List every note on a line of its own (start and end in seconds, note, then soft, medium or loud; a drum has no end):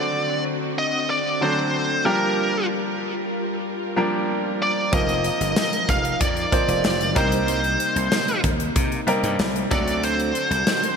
0.00 0.71 D3 medium
0.00 2.03 D3 medium
0.00 0.71 F#3 medium
0.00 0.71 A3 medium
0.00 0.71 C4 medium
0.00 2.03 C4 medium
0.00 0.72 F#4 loud
0.00 2.03 F#4 medium
0.00 0.42 D5 loud
0.79 1.08 D#5 loud
1.10 1.40 D5 loud
1.41 2.05 D3 medium
1.41 2.05 F#3 medium
1.41 2.05 A3 medium
1.41 2.06 C4 medium
1.41 2.04 D4 medium
1.41 2.06 C5 loud
2.05 3.26 F3 medium
2.05 3.26 G3 medium
2.05 4.90 G3 medium
2.05 3.27 A#3 medium
2.05 3.27 D4 medium
2.05 4.90 F4 medium
2.05 3.27 G4 medium
2.05 7.12 A#4 medium
2.05 2.66 A#4 medium
3.96 4.88 F3 medium
3.96 4.88 G3 medium
3.96 4.88 A#3 medium
3.96 4.88 D4 medium
3.96 4.88 A#4 loud
4.62 4.93 D5 medium
4.92 5.29 F1 loud
4.92 6.13 F3 medium
4.92 7.14 F3 medium
4.92 6.14 A#3 medium
4.92 6.14 C4 medium
4.92 6.14 D#4 medium
4.92 9.68 D#4 medium
4.92 6.14 A#4 medium
4.92 5.89 D#5 loud
4.92 kick loud
4.92 closed hi-hat medium
5.09 closed hi-hat soft
5.24 closed hi-hat medium
5.41 5.53 G1 loud
5.41 closed hi-hat medium
5.56 snare loud
5.56 clap medium
5.56 tambourine medium
5.73 closed hi-hat medium
5.89 6.13 F1 medium
5.89 6.21 F5 loud
5.89 kick medium
5.89 closed hi-hat medium
6.05 closed hi-hat soft
6.21 6.45 F2 loud
6.21 7.19 D5 loud
6.21 kick loud
6.21 closed hi-hat loud
6.37 closed hi-hat soft
6.52 7.16 F3 medium
6.52 7.14 A#3 medium
6.52 7.14 C4 medium
6.52 7.15 D#4 medium
6.52 7.17 C5 medium
6.52 kick medium
6.52 closed hi-hat medium
6.68 6.80 F1 loud
6.68 closed hi-hat medium
6.84 7.16 F1 loud
6.84 snare loud
6.84 clap medium
6.84 tambourine medium
7.01 closed hi-hat medium
7.15 7.76 C2 loud
7.15 9.69 C3 medium
7.15 8.37 G3 medium
7.15 8.37 A#3 medium
7.15 9.69 A#3 medium
7.15 8.37 C4 medium
7.15 8.37 D#4 medium
7.15 8.37 A#4 medium
7.15 8.40 C5 medium
7.15 kick loud
7.15 closed hi-hat medium
7.32 closed hi-hat medium
7.48 closed hi-hat medium
7.64 closed hi-hat soft
7.80 closed hi-hat medium
7.96 8.08 C2 loud
7.96 closed hi-hat medium
8.12 snare loud
8.12 clap medium
8.12 tambourine medium
8.28 closed hi-hat medium
8.44 8.68 D#2 loud
8.44 kick medium
8.44 closed hi-hat medium
8.60 closed hi-hat soft
8.76 9.00 C3 loud
8.76 kick loud
8.76 closed hi-hat loud
8.92 closed hi-hat soft
9.07 9.71 G3 loud
9.07 9.71 A#3 medium
9.07 9.69 C4 medium
9.07 9.72 D#4 medium
9.07 9.72 A#4 loud
9.07 closed hi-hat medium
9.23 9.35 G2 loud
9.23 closed hi-hat medium
9.39 9.63 C2 loud
9.39 snare loud
9.39 clap medium
9.39 tambourine medium
9.56 closed hi-hat medium
9.71 10.31 D2 loud
9.71 10.96 D3 medium
9.71 10.92 F#3 medium
9.71 10.92 A3 medium
9.71 10.92 C4 medium
9.71 10.96 C4 medium
9.71 10.93 D4 medium
9.71 10.96 F#4 medium
9.71 10.93 A4 medium
9.71 10.01 D5 medium
9.71 kick loud
9.71 closed hi-hat medium
9.88 closed hi-hat medium
10.03 10.96 C5 loud
10.03 closed hi-hat medium
10.20 closed hi-hat soft
10.35 closed hi-hat medium
10.51 10.63 C2 loud
10.51 closed hi-hat medium
10.67 snare loud
10.67 clap medium
10.67 tambourine medium
10.83 closed hi-hat medium